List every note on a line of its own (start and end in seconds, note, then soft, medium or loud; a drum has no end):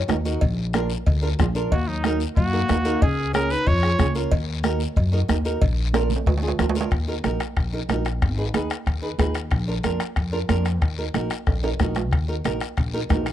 0.08 0.35 D#2 loud
0.08 0.14 D#4 medium
0.08 0.15 F#4 medium
0.08 0.15 A#4 medium
0.08 bombo rim medium
0.08 high conga medium
0.08 low timbale medium
0.08 short guiro medium
0.25 0.41 D#4 medium
0.25 0.42 F#4 medium
0.25 0.42 A#4 medium
0.25 short guiro medium
0.41 0.94 A#1 loud
0.41 bombo low medium
0.41 cowbell loud
0.41 long guiro medium
0.73 0.91 D4 medium
0.73 0.91 F4 medium
0.73 0.91 A#4 medium
0.73 bombo rim medium
0.73 high conga medium
0.73 short guiro medium
0.90 short guiro medium
1.06 1.33 D2 loud
1.06 bombo low medium
1.06 cowbell medium
1.06 long guiro medium
1.22 1.28 D4 medium
1.22 1.28 F4 medium
1.22 1.28 A#4 medium
1.39 1.65 A#1 medium
1.39 1.45 D4 medium
1.39 1.45 F4 medium
1.39 1.45 G#4 medium
1.39 bombo low medium
1.39 bombo rim medium
1.39 high conga medium
1.39 low conga medium
1.39 short guiro medium
1.55 1.71 D4 medium
1.55 1.72 F4 medium
1.55 1.72 A#4 medium
1.55 short guiro medium
1.72 2.24 D#2 loud
1.72 1.90 A#3 medium
1.72 1.89 F#4 medium
1.72 bombo low medium
1.72 cowbell loud
1.72 long guiro medium
1.88 2.21 F#3 medium
1.88 2.20 D#4 medium
2.04 2.21 D#4 medium
2.04 2.22 F#4 medium
2.04 2.22 A#4 medium
2.04 bombo rim medium
2.04 high conga medium
2.04 short guiro medium
2.20 short guiro medium
2.36 2.63 F#2 loud
2.36 3.04 A#3 medium
2.36 3.04 F#4 medium
2.36 bombo low medium
2.36 cowbell medium
2.36 long guiro medium
2.53 2.58 D#4 medium
2.53 2.59 F#4 medium
2.53 2.59 A#4 medium
2.68 2.95 D#2 loud
2.68 2.74 D#4 medium
2.68 2.75 F#4 medium
2.68 2.75 A#4 medium
2.68 bombo rim medium
2.68 high conga medium
2.68 low timbale medium
2.68 short guiro medium
2.85 3.01 D#4 medium
2.85 3.01 F#4 medium
2.85 3.02 A#4 medium
2.85 short guiro medium
3.02 3.54 C#2 loud
3.02 3.35 C#4 medium
3.02 3.34 G#4 loud
3.02 bombo low medium
3.02 cowbell loud
3.02 long guiro medium
3.33 3.51 C#4 medium
3.33 3.53 C#4 medium
3.33 3.51 F4 medium
3.33 3.51 G#4 medium
3.33 3.52 A#4 loud
3.33 bombo rim medium
3.33 high conga medium
3.33 short guiro medium
3.50 3.69 D#4 medium
3.50 3.69 B4 loud
3.50 short guiro medium
3.67 3.93 F2 loud
3.67 4.16 F4 medium
3.67 4.16 C#5 loud
3.67 bombo low medium
3.67 cowbell medium
3.67 long guiro medium
3.83 3.89 C#4 medium
3.83 3.89 F4 medium
3.83 3.89 G#4 medium
3.83 bombo rim medium
3.98 4.25 C#2 medium
3.98 4.05 C#4 medium
3.98 4.05 F4 medium
3.98 4.05 G#4 medium
3.98 bombo low medium
3.98 bombo rim medium
3.98 high conga medium
3.98 low conga medium
3.98 short guiro medium
4.15 4.31 C#4 medium
4.15 4.32 F4 medium
4.15 4.32 A#4 medium
4.15 short guiro medium
4.31 4.84 D#2 loud
4.31 bombo low medium
4.31 cowbell loud
4.31 long guiro medium
4.63 4.81 D#4 medium
4.63 4.81 F#4 medium
4.63 4.81 A#4 loud
4.63 bombo rim medium
4.63 high conga medium
4.63 short guiro medium
4.80 short guiro medium
4.96 5.23 F#2 loud
4.96 bombo low medium
4.96 cowbell medium
4.96 long guiro medium
5.12 5.18 D#4 medium
5.12 5.18 F#4 medium
5.12 5.19 A#4 medium
5.28 5.55 D#2 loud
5.28 5.34 D#4 medium
5.28 5.34 F#4 medium
5.28 5.35 A#4 medium
5.28 bombo rim medium
5.28 high conga medium
5.28 short guiro medium
5.45 5.61 D#4 medium
5.45 5.61 F#4 medium
5.45 5.62 A#4 medium
5.45 short guiro medium
5.62 6.14 A#1 loud
5.62 bombo low medium
5.62 cowbell loud
5.62 long guiro medium
5.94 6.11 D4 medium
5.94 6.11 F4 medium
5.94 6.11 A#4 medium
5.94 bombo rim medium
5.94 high conga medium
5.94 high timbale loud
5.94 short guiro medium
6.10 high conga medium
6.10 low conga medium
6.10 short guiro medium
6.16 high timbale medium
6.26 6.53 D2 medium
6.26 bombo low medium
6.26 cowbell medium
6.26 low timbale loud
6.26 long guiro medium
6.38 low timbale medium
6.42 6.48 D4 medium
6.42 6.48 F4 medium
6.42 6.48 G#4 medium
6.48 low timbale medium
6.59 6.85 D2 medium
6.59 6.65 D4 medium
6.59 6.65 F4 medium
6.59 6.65 A#4 medium
6.59 bombo rim medium
6.59 high conga medium
6.59 low conga medium
6.59 low timbale medium
6.59 short guiro medium
6.70 low timbale medium
6.75 6.91 D4 medium
6.75 6.92 F4 medium
6.75 6.92 A#4 medium
6.75 short guiro medium
6.81 low timbale loud
6.91 7.18 D#2 loud
6.91 bombo low medium
6.91 bombo rim medium
6.91 high timbale medium
6.91 long guiro medium
7.08 7.13 D#4 medium
7.08 7.14 F#4 medium
7.08 7.14 A#4 medium
7.24 7.37 A#1 medium
7.24 7.41 D#4 medium
7.24 7.41 F#4 medium
7.24 7.41 A#4 medium
7.24 bombo rim medium
7.24 high conga medium
7.24 high timbale medium
7.24 short guiro medium
7.40 bombo rim medium
7.40 high timbale medium
7.40 short guiro medium
7.56 7.83 A#1 medium
7.56 bombo low medium
7.56 bombo rim medium
7.56 high conga soft
7.56 high timbale medium
7.56 long guiro medium
7.73 7.79 D#4 medium
7.73 7.79 F#4 medium
7.73 7.79 A#4 medium
7.89 8.24 A#1 medium
7.89 8.06 D#4 medium
7.89 8.06 F#4 medium
7.89 8.07 A#4 medium
7.89 bombo rim medium
7.89 high conga medium
7.89 high timbale medium
7.89 low timbale medium
7.89 short guiro medium
8.05 bombo rim medium
8.05 high timbale medium
8.05 short guiro medium
8.21 8.48 G#1 medium
8.21 bombo low medium
8.21 bombo rim medium
8.21 high conga soft
8.21 high timbale medium
8.21 long guiro medium
8.38 8.43 D#4 medium
8.38 8.44 G#4 medium
8.38 8.44 B4 medium
8.54 8.67 D#2 medium
8.54 8.71 D#4 medium
8.54 8.71 G#4 medium
8.54 8.72 B4 medium
8.54 bombo rim medium
8.54 high conga medium
8.54 high timbale medium
8.54 short guiro medium
8.70 bombo rim medium
8.70 high timbale medium
8.70 short guiro medium
8.86 9.13 D#2 medium
8.86 bombo low medium
8.86 bombo rim medium
8.86 high conga soft
8.86 high timbale medium
8.86 long guiro medium
9.02 9.08 D#4 medium
9.02 9.08 G#4 medium
9.02 9.09 B4 medium
9.18 9.53 D#2 medium
9.18 9.36 D#4 medium
9.18 9.36 G#4 medium
9.18 9.36 B4 medium
9.18 bombo low medium
9.18 bombo rim medium
9.18 high conga medium
9.18 high timbale medium
9.18 low timbale medium
9.18 short guiro medium
9.34 bombo rim medium
9.34 high timbale medium
9.34 short guiro medium
9.51 9.78 A#1 loud
9.51 bombo low medium
9.51 bombo rim medium
9.51 high conga soft
9.51 high timbale medium
9.51 long guiro medium
9.67 9.73 D4 medium
9.67 9.74 F4 medium
9.67 9.74 A#4 medium
9.83 9.97 F2 medium
9.83 10.01 D4 medium
9.83 10.01 F4 medium
9.83 10.01 A#4 medium
9.83 bombo rim medium
9.83 high conga medium
9.83 high timbale medium
9.83 short guiro medium
10.00 bombo rim medium
10.00 high timbale medium
10.00 short guiro medium
10.16 10.43 F2 medium
10.16 bombo low medium
10.16 bombo rim medium
10.16 high conga soft
10.16 high timbale medium
10.16 long guiro medium
10.32 10.38 D4 medium
10.32 10.39 F4 medium
10.32 10.39 A#4 medium
10.49 10.82 F2 loud
10.49 10.66 D4 medium
10.49 10.66 F4 medium
10.49 10.67 A#4 medium
10.49 bombo rim medium
10.49 high conga medium
10.49 high timbale medium
10.49 short guiro medium
10.65 bombo rim medium
10.65 high timbale medium
10.65 short guiro medium
10.82 11.08 D#2 loud
10.82 bombo low medium
10.82 bombo rim medium
10.82 high conga soft
10.82 high timbale medium
10.82 long guiro medium
10.98 11.04 D#4 medium
10.98 11.04 F#4 medium
10.98 11.04 A#4 medium
11.14 11.27 A#1 medium
11.14 11.31 D#4 medium
11.14 11.32 F#4 medium
11.14 11.32 A#4 medium
11.14 bombo rim medium
11.14 high conga medium
11.14 high timbale medium
11.14 short guiro medium
11.30 bombo rim medium
11.30 high timbale medium
11.30 short guiro medium
11.47 11.73 A#1 medium
11.47 bombo low medium
11.47 bombo rim medium
11.47 high conga soft
11.47 high timbale medium
11.47 long guiro medium
11.63 11.69 D#4 medium
11.63 11.69 F#4 medium
11.63 11.69 A#4 medium
11.63 high timbale medium
11.79 12.13 A#1 medium
11.79 11.97 D#4 medium
11.79 11.97 F#4 medium
11.79 11.97 A#4 medium
11.79 bombo low medium
11.79 bombo rim medium
11.79 high conga medium
11.79 low timbale medium
11.79 short guiro medium
11.95 bombo rim medium
11.95 low timbale medium
11.95 short guiro medium
12.11 12.39 D#2 loud
12.11 bombo low medium
12.11 bombo rim medium
12.11 high conga soft
12.11 high timbale medium
12.11 long guiro medium
12.28 12.34 D#4 medium
12.28 12.34 F#4 medium
12.28 12.34 A#4 medium
12.44 12.58 A#1 medium
12.44 12.62 D#4 medium
12.44 12.62 F#4 medium
12.44 12.62 A#4 medium
12.44 bombo rim medium
12.44 high conga medium
12.44 high timbale medium
12.44 short guiro medium
12.60 bombo rim medium
12.60 high timbale medium
12.60 short guiro medium
12.77 13.04 A#1 medium
12.77 bombo low medium
12.77 bombo rim medium
12.77 high conga soft
12.77 high timbale medium
12.77 long guiro medium
12.93 12.99 D#4 medium
12.93 12.99 F#4 medium
12.93 13.00 A#4 medium
13.09 13.32 A#1 loud
13.09 13.27 D#4 medium
13.09 13.27 F#4 medium
13.09 13.27 A#4 medium
13.09 bombo low medium
13.09 bombo rim medium
13.09 high conga medium
13.09 high timbale medium
13.09 low timbale medium
13.09 short guiro medium
13.26 bombo rim medium
13.26 high timbale medium
13.26 short guiro medium